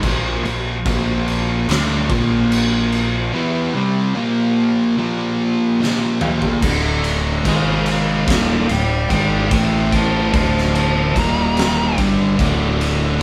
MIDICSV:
0, 0, Header, 1, 6, 480
1, 0, Start_track
1, 0, Key_signature, -1, "minor"
1, 0, Tempo, 824176
1, 21, Time_signature, 4, 2, 24, 8
1, 7703, End_track
2, 0, Start_track
2, 0, Title_t, "Lead electric guitar"
2, 0, Program_c, 0, 29
2, 4358, Note_on_c, 0, 68, 91
2, 4362, Note_on_c, 0, 77, 107
2, 4586, Note_off_c, 0, 77, 0
2, 4592, Note_off_c, 0, 68, 0
2, 4602, Note_on_c, 0, 68, 74
2, 4610, Note_on_c, 0, 77, 92
2, 4817, Note_off_c, 0, 68, 0
2, 4830, Note_off_c, 0, 77, 0
2, 4837, Note_on_c, 0, 69, 82
2, 4842, Note_on_c, 0, 77, 86
2, 5054, Note_off_c, 0, 69, 0
2, 5066, Note_off_c, 0, 77, 0
2, 5078, Note_on_c, 0, 74, 81
2, 5081, Note_on_c, 0, 79, 82
2, 5295, Note_off_c, 0, 74, 0
2, 5305, Note_off_c, 0, 79, 0
2, 5322, Note_on_c, 0, 74, 80
2, 5327, Note_on_c, 0, 79, 86
2, 5537, Note_off_c, 0, 74, 0
2, 5548, Note_off_c, 0, 79, 0
2, 5556, Note_on_c, 0, 76, 81
2, 5560, Note_on_c, 0, 79, 79
2, 5773, Note_off_c, 0, 76, 0
2, 5784, Note_off_c, 0, 79, 0
2, 5793, Note_on_c, 0, 72, 68
2, 5798, Note_on_c, 0, 81, 83
2, 6011, Note_off_c, 0, 72, 0
2, 6023, Note_off_c, 0, 81, 0
2, 6030, Note_on_c, 0, 72, 76
2, 6035, Note_on_c, 0, 81, 64
2, 6250, Note_off_c, 0, 72, 0
2, 6260, Note_off_c, 0, 81, 0
2, 6265, Note_on_c, 0, 72, 81
2, 6271, Note_on_c, 0, 81, 89
2, 6487, Note_off_c, 0, 72, 0
2, 6499, Note_off_c, 0, 81, 0
2, 6519, Note_on_c, 0, 82, 100
2, 6975, Note_off_c, 0, 82, 0
2, 7703, End_track
3, 0, Start_track
3, 0, Title_t, "Tonewheel organ"
3, 0, Program_c, 1, 16
3, 25, Note_on_c, 1, 65, 66
3, 1928, Note_off_c, 1, 65, 0
3, 1944, Note_on_c, 1, 67, 62
3, 3846, Note_off_c, 1, 67, 0
3, 3863, Note_on_c, 1, 69, 64
3, 3864, Note_on_c, 1, 62, 69
3, 3868, Note_on_c, 1, 76, 82
3, 4339, Note_off_c, 1, 69, 0
3, 4340, Note_off_c, 1, 62, 0
3, 4342, Note_off_c, 1, 76, 0
3, 4351, Note_on_c, 1, 56, 81
3, 4352, Note_on_c, 1, 70, 77
3, 4357, Note_on_c, 1, 63, 70
3, 4823, Note_off_c, 1, 56, 0
3, 4823, Note_off_c, 1, 70, 0
3, 4826, Note_off_c, 1, 63, 0
3, 4829, Note_on_c, 1, 77, 78
3, 4831, Note_on_c, 1, 62, 81
3, 4831, Note_on_c, 1, 81, 75
3, 5539, Note_off_c, 1, 77, 0
3, 5540, Note_off_c, 1, 62, 0
3, 5551, Note_on_c, 1, 57, 75
3, 5554, Note_on_c, 1, 64, 61
3, 6022, Note_off_c, 1, 57, 0
3, 6023, Note_off_c, 1, 64, 0
3, 6044, Note_on_c, 1, 62, 76
3, 6048, Note_on_c, 1, 76, 89
3, 6488, Note_off_c, 1, 81, 0
3, 6508, Note_off_c, 1, 62, 0
3, 6510, Note_off_c, 1, 76, 0
3, 6512, Note_on_c, 1, 63, 87
3, 6512, Note_on_c, 1, 70, 77
3, 6512, Note_on_c, 1, 77, 81
3, 6981, Note_off_c, 1, 63, 0
3, 6981, Note_off_c, 1, 70, 0
3, 6981, Note_off_c, 1, 77, 0
3, 6983, Note_on_c, 1, 62, 72
3, 6990, Note_on_c, 1, 69, 73
3, 6990, Note_on_c, 1, 76, 73
3, 7693, Note_off_c, 1, 62, 0
3, 7697, Note_off_c, 1, 69, 0
3, 7697, Note_off_c, 1, 76, 0
3, 7703, End_track
4, 0, Start_track
4, 0, Title_t, "Distorted electric guitar"
4, 0, Program_c, 2, 30
4, 16, Note_on_c, 2, 46, 90
4, 17, Note_on_c, 2, 53, 111
4, 20, Note_on_c, 2, 58, 114
4, 245, Note_off_c, 2, 46, 0
4, 249, Note_off_c, 2, 53, 0
4, 252, Note_on_c, 2, 46, 66
4, 254, Note_off_c, 2, 58, 0
4, 256, Note_on_c, 2, 53, 69
4, 450, Note_off_c, 2, 46, 0
4, 451, Note_off_c, 2, 53, 0
4, 495, Note_on_c, 2, 46, 86
4, 501, Note_on_c, 2, 53, 101
4, 502, Note_on_c, 2, 58, 108
4, 972, Note_off_c, 2, 46, 0
4, 976, Note_off_c, 2, 53, 0
4, 976, Note_off_c, 2, 58, 0
4, 980, Note_on_c, 2, 50, 121
4, 985, Note_on_c, 2, 57, 117
4, 988, Note_on_c, 2, 62, 112
4, 1215, Note_off_c, 2, 50, 0
4, 1218, Note_off_c, 2, 57, 0
4, 1219, Note_off_c, 2, 62, 0
4, 1219, Note_on_c, 2, 46, 97
4, 1225, Note_on_c, 2, 53, 101
4, 1226, Note_on_c, 2, 58, 113
4, 1935, Note_off_c, 2, 46, 0
4, 1938, Note_off_c, 2, 53, 0
4, 1939, Note_off_c, 2, 58, 0
4, 1942, Note_on_c, 2, 52, 99
4, 1944, Note_on_c, 2, 59, 107
4, 1948, Note_on_c, 2, 64, 108
4, 2176, Note_off_c, 2, 52, 0
4, 2177, Note_off_c, 2, 59, 0
4, 2180, Note_off_c, 2, 64, 0
4, 2184, Note_on_c, 2, 48, 98
4, 2189, Note_on_c, 2, 55, 94
4, 2191, Note_on_c, 2, 60, 103
4, 2414, Note_off_c, 2, 48, 0
4, 2417, Note_on_c, 2, 46, 111
4, 2420, Note_off_c, 2, 55, 0
4, 2421, Note_off_c, 2, 60, 0
4, 2422, Note_on_c, 2, 53, 88
4, 2424, Note_on_c, 2, 58, 102
4, 2894, Note_off_c, 2, 46, 0
4, 2897, Note_off_c, 2, 53, 0
4, 2898, Note_off_c, 2, 58, 0
4, 2903, Note_on_c, 2, 46, 100
4, 2905, Note_on_c, 2, 53, 110
4, 2907, Note_on_c, 2, 58, 117
4, 3368, Note_off_c, 2, 46, 0
4, 3373, Note_off_c, 2, 53, 0
4, 3375, Note_on_c, 2, 46, 99
4, 3376, Note_off_c, 2, 58, 0
4, 3380, Note_on_c, 2, 53, 103
4, 3383, Note_on_c, 2, 58, 107
4, 3612, Note_off_c, 2, 53, 0
4, 3613, Note_off_c, 2, 46, 0
4, 3617, Note_off_c, 2, 58, 0
4, 3619, Note_on_c, 2, 53, 112
4, 3621, Note_on_c, 2, 46, 108
4, 3625, Note_on_c, 2, 58, 117
4, 3855, Note_off_c, 2, 53, 0
4, 3856, Note_off_c, 2, 46, 0
4, 3858, Note_off_c, 2, 58, 0
4, 3860, Note_on_c, 2, 38, 101
4, 3861, Note_on_c, 2, 45, 116
4, 3865, Note_on_c, 2, 50, 114
4, 4335, Note_off_c, 2, 38, 0
4, 4336, Note_off_c, 2, 45, 0
4, 4338, Note_off_c, 2, 50, 0
4, 4342, Note_on_c, 2, 44, 102
4, 4344, Note_on_c, 2, 51, 101
4, 4350, Note_on_c, 2, 56, 108
4, 4816, Note_off_c, 2, 44, 0
4, 4817, Note_off_c, 2, 51, 0
4, 4820, Note_off_c, 2, 56, 0
4, 4820, Note_on_c, 2, 39, 100
4, 4822, Note_on_c, 2, 46, 105
4, 4825, Note_on_c, 2, 51, 124
4, 5055, Note_off_c, 2, 39, 0
4, 5056, Note_off_c, 2, 46, 0
4, 5057, Note_off_c, 2, 51, 0
4, 5062, Note_on_c, 2, 38, 66
4, 5067, Note_on_c, 2, 45, 84
4, 5255, Note_off_c, 2, 38, 0
4, 5258, Note_off_c, 2, 45, 0
4, 5300, Note_on_c, 2, 44, 94
4, 5301, Note_on_c, 2, 51, 93
4, 5304, Note_on_c, 2, 56, 93
4, 5534, Note_off_c, 2, 44, 0
4, 5535, Note_off_c, 2, 51, 0
4, 5536, Note_off_c, 2, 56, 0
4, 5542, Note_on_c, 2, 45, 106
4, 5542, Note_on_c, 2, 52, 102
4, 5544, Note_on_c, 2, 57, 120
4, 6011, Note_off_c, 2, 45, 0
4, 6015, Note_off_c, 2, 52, 0
4, 6015, Note_on_c, 2, 38, 95
4, 6016, Note_off_c, 2, 57, 0
4, 6018, Note_on_c, 2, 45, 103
4, 6019, Note_on_c, 2, 50, 99
4, 6488, Note_off_c, 2, 45, 0
4, 6489, Note_off_c, 2, 38, 0
4, 6490, Note_on_c, 2, 46, 105
4, 6491, Note_off_c, 2, 50, 0
4, 6492, Note_on_c, 2, 39, 99
4, 6493, Note_on_c, 2, 51, 110
4, 6968, Note_off_c, 2, 39, 0
4, 6968, Note_off_c, 2, 46, 0
4, 6969, Note_off_c, 2, 51, 0
4, 6971, Note_on_c, 2, 43, 100
4, 6975, Note_on_c, 2, 50, 109
4, 6977, Note_on_c, 2, 55, 125
4, 7208, Note_off_c, 2, 43, 0
4, 7210, Note_off_c, 2, 50, 0
4, 7211, Note_off_c, 2, 55, 0
4, 7214, Note_on_c, 2, 38, 88
4, 7217, Note_on_c, 2, 45, 100
4, 7222, Note_on_c, 2, 50, 108
4, 7686, Note_off_c, 2, 38, 0
4, 7690, Note_off_c, 2, 45, 0
4, 7691, Note_off_c, 2, 50, 0
4, 7703, End_track
5, 0, Start_track
5, 0, Title_t, "Picked electric bass"
5, 0, Program_c, 3, 34
5, 16, Note_on_c, 3, 34, 100
5, 242, Note_off_c, 3, 34, 0
5, 257, Note_on_c, 3, 34, 76
5, 483, Note_off_c, 3, 34, 0
5, 499, Note_on_c, 3, 34, 107
5, 958, Note_off_c, 3, 34, 0
5, 982, Note_on_c, 3, 38, 94
5, 1206, Note_off_c, 3, 38, 0
5, 1220, Note_on_c, 3, 34, 105
5, 1920, Note_off_c, 3, 34, 0
5, 3855, Note_on_c, 3, 26, 100
5, 4317, Note_off_c, 3, 26, 0
5, 4338, Note_on_c, 3, 32, 111
5, 4798, Note_off_c, 3, 32, 0
5, 4818, Note_on_c, 3, 27, 90
5, 5044, Note_off_c, 3, 27, 0
5, 5064, Note_on_c, 3, 26, 81
5, 5287, Note_off_c, 3, 26, 0
5, 5299, Note_on_c, 3, 32, 95
5, 5524, Note_off_c, 3, 32, 0
5, 5540, Note_on_c, 3, 33, 103
5, 5998, Note_off_c, 3, 33, 0
5, 6018, Note_on_c, 3, 26, 104
5, 6476, Note_off_c, 3, 26, 0
5, 6974, Note_on_c, 3, 31, 98
5, 7200, Note_off_c, 3, 31, 0
5, 7215, Note_on_c, 3, 26, 94
5, 7673, Note_off_c, 3, 26, 0
5, 7703, End_track
6, 0, Start_track
6, 0, Title_t, "Drums"
6, 16, Note_on_c, 9, 49, 82
6, 18, Note_on_c, 9, 36, 98
6, 74, Note_off_c, 9, 49, 0
6, 76, Note_off_c, 9, 36, 0
6, 263, Note_on_c, 9, 49, 55
6, 321, Note_off_c, 9, 49, 0
6, 500, Note_on_c, 9, 36, 104
6, 501, Note_on_c, 9, 49, 76
6, 558, Note_off_c, 9, 36, 0
6, 559, Note_off_c, 9, 49, 0
6, 743, Note_on_c, 9, 49, 55
6, 801, Note_off_c, 9, 49, 0
6, 982, Note_on_c, 9, 49, 81
6, 997, Note_on_c, 9, 38, 109
6, 1040, Note_off_c, 9, 49, 0
6, 1055, Note_off_c, 9, 38, 0
6, 1221, Note_on_c, 9, 36, 103
6, 1222, Note_on_c, 9, 49, 57
6, 1279, Note_off_c, 9, 36, 0
6, 1280, Note_off_c, 9, 49, 0
6, 1466, Note_on_c, 9, 49, 88
6, 1524, Note_off_c, 9, 49, 0
6, 1703, Note_on_c, 9, 49, 66
6, 1761, Note_off_c, 9, 49, 0
6, 3396, Note_on_c, 9, 38, 63
6, 3454, Note_off_c, 9, 38, 0
6, 3617, Note_on_c, 9, 45, 97
6, 3676, Note_off_c, 9, 45, 0
6, 3738, Note_on_c, 9, 43, 98
6, 3796, Note_off_c, 9, 43, 0
6, 3857, Note_on_c, 9, 57, 121
6, 3858, Note_on_c, 9, 36, 97
6, 3915, Note_off_c, 9, 57, 0
6, 3917, Note_off_c, 9, 36, 0
6, 4100, Note_on_c, 9, 51, 71
6, 4158, Note_off_c, 9, 51, 0
6, 4340, Note_on_c, 9, 36, 101
6, 4340, Note_on_c, 9, 51, 109
6, 4398, Note_off_c, 9, 36, 0
6, 4399, Note_off_c, 9, 51, 0
6, 4577, Note_on_c, 9, 51, 75
6, 4636, Note_off_c, 9, 51, 0
6, 4821, Note_on_c, 9, 36, 122
6, 4821, Note_on_c, 9, 51, 99
6, 4836, Note_on_c, 9, 38, 113
6, 4879, Note_off_c, 9, 36, 0
6, 4880, Note_off_c, 9, 51, 0
6, 4894, Note_off_c, 9, 38, 0
6, 5063, Note_on_c, 9, 51, 79
6, 5121, Note_off_c, 9, 51, 0
6, 5301, Note_on_c, 9, 36, 108
6, 5304, Note_on_c, 9, 51, 106
6, 5359, Note_off_c, 9, 36, 0
6, 5362, Note_off_c, 9, 51, 0
6, 5540, Note_on_c, 9, 36, 122
6, 5540, Note_on_c, 9, 51, 87
6, 5598, Note_off_c, 9, 51, 0
6, 5599, Note_off_c, 9, 36, 0
6, 5780, Note_on_c, 9, 36, 96
6, 5782, Note_on_c, 9, 51, 99
6, 5839, Note_off_c, 9, 36, 0
6, 5840, Note_off_c, 9, 51, 0
6, 6020, Note_on_c, 9, 36, 108
6, 6020, Note_on_c, 9, 51, 81
6, 6079, Note_off_c, 9, 36, 0
6, 6079, Note_off_c, 9, 51, 0
6, 6160, Note_on_c, 9, 38, 35
6, 6218, Note_off_c, 9, 38, 0
6, 6263, Note_on_c, 9, 51, 111
6, 6321, Note_off_c, 9, 51, 0
6, 6499, Note_on_c, 9, 36, 96
6, 6502, Note_on_c, 9, 51, 78
6, 6558, Note_off_c, 9, 36, 0
6, 6561, Note_off_c, 9, 51, 0
6, 6738, Note_on_c, 9, 51, 97
6, 6752, Note_on_c, 9, 38, 108
6, 6796, Note_off_c, 9, 51, 0
6, 6810, Note_off_c, 9, 38, 0
6, 6977, Note_on_c, 9, 36, 104
6, 6979, Note_on_c, 9, 51, 70
6, 7036, Note_off_c, 9, 36, 0
6, 7037, Note_off_c, 9, 51, 0
6, 7217, Note_on_c, 9, 36, 115
6, 7221, Note_on_c, 9, 51, 112
6, 7275, Note_off_c, 9, 36, 0
6, 7279, Note_off_c, 9, 51, 0
6, 7460, Note_on_c, 9, 51, 83
6, 7519, Note_off_c, 9, 51, 0
6, 7703, End_track
0, 0, End_of_file